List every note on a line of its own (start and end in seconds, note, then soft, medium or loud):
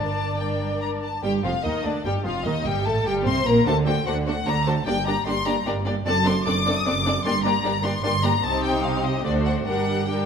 0.00 1.02 G1 soft
0.00 1.02 G2 soft
0.00 0.38 D4 soft
0.00 0.38 A#4 soft
0.00 1.00 D5 soft
0.00 0.38 A5 medium
0.39 1.01 D4 soft
0.39 1.01 A#4 soft
0.39 0.81 G5 soft
0.81 0.89 A#5 medium
1.02 1.23 A5 medium
1.23 1.42 G1 medium
1.23 1.42 G2 medium
1.23 1.31 G3 medium
1.23 1.42 G4 medium
1.23 1.32 G5 medium
1.44 1.52 F1 medium
1.44 1.52 F2 medium
1.44 1.52 F3 medium
1.44 1.52 F4 medium
1.44 1.64 F5 medium
1.64 1.72 D#2 medium
1.64 1.84 D#3 medium
1.64 1.84 D#4 medium
1.64 1.85 D#5 medium
1.84 1.92 D2 medium
1.84 1.93 D2 medium
1.84 1.93 D3 medium
1.84 2.05 D4 medium
1.84 2.05 D5 medium
2.04 2.13 G1 medium
2.04 2.13 G2 medium
2.04 2.13 G3 medium
2.04 2.25 G4 medium
2.04 2.12 G5 medium
2.25 2.45 F1 medium
2.25 2.45 F2 medium
2.25 2.33 F3 medium
2.25 2.45 F4 medium
2.25 2.45 F5 medium
2.45 2.66 D#2 medium
2.45 2.53 D#3 medium
2.45 2.66 D#4 medium
2.45 2.66 D#5 medium
2.65 2.86 G1 medium
2.65 2.86 G2 medium
2.65 2.86 G3 medium
2.65 2.86 G4 medium
2.65 2.86 G5 medium
2.86 3.06 A1 medium
2.86 3.06 A2 medium
2.86 2.94 A3 medium
2.86 3.06 A4 medium
2.86 3.06 A5 medium
3.06 3.26 G1 medium
3.06 3.26 G2 medium
3.06 3.26 G3 medium
3.06 3.26 G4 medium
3.06 3.15 G5 medium
3.26 3.46 C2 medium
3.26 3.46 C3 medium
3.26 3.46 C4 medium
3.26 3.46 C5 medium
3.26 3.46 C6 medium
3.46 3.66 A#1 medium
3.46 3.66 A#2 medium
3.46 3.66 A#3 medium
3.46 3.67 A#4 medium
3.46 3.67 A#5 medium
3.66 4.02 D2 medium
3.66 4.02 D3 medium
3.66 3.74 A3 medium
3.66 3.74 D4 medium
3.66 3.75 F#4 soft
3.66 3.75 C5 soft
3.66 3.75 A5 medium
3.87 3.95 A3 soft
3.87 3.95 D4 soft
3.87 3.95 F#4 soft
3.87 3.95 C5 soft
3.87 4.06 G5 medium
4.06 4.42 D2 medium
4.06 4.42 D3 medium
4.06 4.15 A3 soft
4.06 4.15 D4 soft
4.06 4.15 F#4 soft
4.06 4.15 C5 soft
4.06 4.15 F#5 medium
4.26 4.35 A3 medium
4.26 4.35 D4 soft
4.26 4.34 F#4 soft
4.26 4.35 C5 soft
4.26 4.47 F#5 medium
4.46 4.82 D2 medium
4.46 4.82 D3 medium
4.46 4.54 A3 medium
4.46 4.54 D4 medium
4.46 4.55 F#4 medium
4.46 4.55 C5 medium
4.46 4.67 A#5 medium
4.66 4.74 A3 soft
4.66 4.74 D4 soft
4.66 4.75 F#4 medium
4.66 4.75 C5 medium
4.66 4.87 A5 medium
4.87 5.22 G1 medium
4.87 5.23 G2 medium
4.87 4.95 A#3 medium
4.87 4.95 D4 medium
4.87 4.95 G4 medium
4.87 4.95 D5 medium
4.87 5.06 G5 medium
5.07 5.15 A#3 soft
5.07 5.15 D4 soft
5.07 5.15 G4 medium
5.07 5.15 D5 medium
5.07 5.27 A#5 medium
5.26 5.62 G1 medium
5.26 5.62 G2 medium
5.26 5.35 A#3 medium
5.26 5.35 D4 medium
5.26 5.34 G4 medium
5.26 5.34 D5 medium
5.26 5.46 C6 medium
5.46 5.55 A#3 medium
5.46 5.55 D4 medium
5.46 5.54 G4 medium
5.46 5.54 D5 medium
5.46 5.66 A#5 medium
5.66 6.02 G1 medium
5.66 6.02 G2 medium
5.66 5.75 A#3 medium
5.66 5.75 D4 medium
5.66 5.74 G4 soft
5.66 5.75 D5 medium
5.86 5.95 A#3 medium
5.86 5.94 D4 soft
5.86 5.94 G4 medium
5.86 5.94 D5 medium
6.06 6.41 F#1 medium
6.06 6.41 F#2 medium
6.06 6.14 C4 medium
6.06 6.14 D4 medium
6.06 6.14 A4 medium
6.06 6.14 D5 medium
6.06 6.25 A5 medium
6.26 6.34 C4 medium
6.26 6.34 D4 medium
6.26 6.35 A4 medium
6.26 6.34 D5 medium
6.26 6.46 C6 medium
6.46 6.81 F#1 medium
6.46 6.81 F#2 medium
6.46 6.54 C4 medium
6.46 6.54 D4 medium
6.46 6.54 A4 medium
6.46 6.54 D5 medium
6.46 6.75 D6 medium
6.66 6.74 C4 medium
6.66 6.74 D4 medium
6.66 6.74 A4 medium
6.66 6.75 D5 medium
6.77 6.87 D#6 medium
6.86 7.21 F#1 medium
6.86 7.21 F#2 medium
6.86 6.94 C4 medium
6.86 6.94 D4 medium
6.86 6.94 A4 medium
6.86 6.94 D5 soft
6.86 7.25 D6 medium
7.06 7.14 C4 soft
7.06 7.14 D4 soft
7.06 7.15 A4 medium
7.06 7.14 D5 medium
7.25 7.60 G1 medium
7.25 7.60 G2 medium
7.25 7.33 A#3 medium
7.25 7.33 D4 medium
7.25 7.34 G4 medium
7.25 7.33 D5 medium
7.25 7.45 C6 medium
7.45 7.53 A#3 medium
7.45 7.53 D4 medium
7.45 7.53 G4 medium
7.45 7.53 D5 medium
7.45 7.83 A#5 medium
7.64 7.99 G1 medium
7.64 8.00 G2 medium
7.64 7.72 A#3 medium
7.64 7.72 D4 medium
7.64 7.72 G4 medium
7.64 7.73 D5 medium
7.84 7.92 A#3 medium
7.84 7.92 D4 medium
7.84 7.93 G4 medium
7.84 7.93 D5 medium
7.84 8.03 C6 medium
8.04 8.39 G1 medium
8.04 8.39 G2 medium
8.04 8.12 A#3 medium
8.04 8.12 D4 medium
8.04 8.12 G4 medium
8.04 8.12 D5 soft
8.04 8.23 C6 loud
8.23 8.32 A#3 soft
8.23 8.32 D4 soft
8.23 8.32 G4 medium
8.23 8.32 D5 medium
8.23 8.44 A#5 medium
8.43 9.21 C2 medium
8.43 9.21 C3 medium
8.43 9.21 C4 medium
8.43 9.21 D#4 medium
8.43 9.21 G4 medium
8.43 9.21 C5 medium
8.43 8.64 A5 medium
8.64 8.84 G5 medium
8.84 9.04 F5 medium
9.04 9.25 D#5 medium
9.25 9.68 D2 medium
9.25 9.67 D3 medium
9.25 9.67 A3 medium
9.25 9.66 D4 medium
9.25 9.68 F#4 soft
9.25 9.67 C5 medium
9.25 9.33 D5 medium
9.46 9.54 F#5 medium
9.67 10.26 G1 soft
9.67 10.26 G2 medium
9.67 10.08 G3 medium
9.67 10.08 D4 medium
9.67 10.09 G4 soft
9.67 10.08 A#4 soft
9.67 10.09 F#5 medium
10.09 10.26 G3 soft
10.09 10.26 D4 soft
10.09 10.26 G4 soft
10.09 10.26 A#4 soft
10.09 10.26 G5 medium